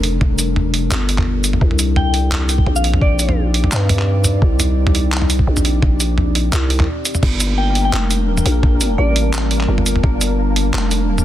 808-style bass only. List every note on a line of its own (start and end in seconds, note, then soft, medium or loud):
0.00 0.90 F1 loud
0.91 1.60 G1 loud
1.61 2.65 C2 loud
2.66 3.71 A#1 medium
3.72 4.41 G2 loud
4.42 5.46 C2 loud
5.47 6.51 A#1 loud
6.52 6.88 C2 loud
7.23 7.92 G1 loud
7.93 8.44 F1 loud
8.46 8.97 A#1 loud
8.98 9.67 A1 loud
9.68 10.02 G1 loud
10.03 10.72 G1 loud
10.74 11.25 F1 loud